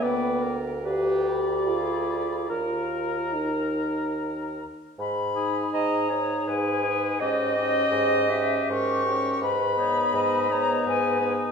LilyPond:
<<
  \new Staff \with { instrumentName = "Flute" } { \time 3/4 \key gis \minor \tempo 4 = 80 g''8 r8 f''8 b''4. | ais''2~ ais''8 r8 | b''4 ais''4 gis''4 | dis''4. e''8 cis'''4 |
b''4. ais''8 gis''8 r8 | }
  \new Staff \with { instrumentName = "Clarinet" } { \time 3/4 \key gis \minor b'8 ais'8 b'8 r8 aes'4 | ais'2~ ais'8 r8 | r4 dis''8 cis''8 b'4 | dis''2 ais'4 |
b'8 cis''8 dis''8 cis''8 b'4 | }
  \new Staff \with { instrumentName = "Oboe" } { \time 3/4 \key gis \minor d''8 r8 d''2 | ais'2~ ais'8 r8 | r8 gis'4 gis'4 gis'8 | g'8 g'4 g'4 g'8 |
r8 dis'4 dis'4 dis'8 | }
  \new Staff \with { instrumentName = "French horn" } { \time 3/4 \key gis \minor b8 r8 g'4 f'4 | eis'4 dis'4. r8 | r8 dis'4 dis'4 dis'8 | cis'8 cis'4 cis'4 cis'8 |
r8 b4 b4 b8 | }
  \new Staff \with { instrumentName = "Bassoon" } { \clef bass \time 3/4 \key gis \minor d,2. | dis,2~ dis,8 r8 | gis,4 gis,4 gis,4 | gis,4 gis,4 gis,4 |
gis,4 gis,4 gis,4 | }
>>